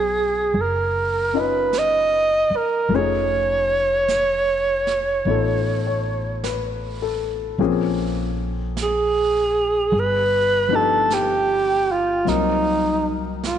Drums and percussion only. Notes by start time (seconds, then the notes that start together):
0.54 brush sweep
1.73 brush sweep, snare, hi-hat pedal
2.91 brush sweep
4.08 brush sweep, snare, hi-hat pedal
4.87 snare
5.26 brush sweep
6.44 brush sweep, snare, hi-hat pedal
7.60 brush sweep
8.77 brush sweep, snare, hi-hat pedal
9.93 brush sweep
11.10 brush sweep, snare, hi-hat pedal
12.27 brush sweep, snare
13.44 brush sweep, snare, hi-hat pedal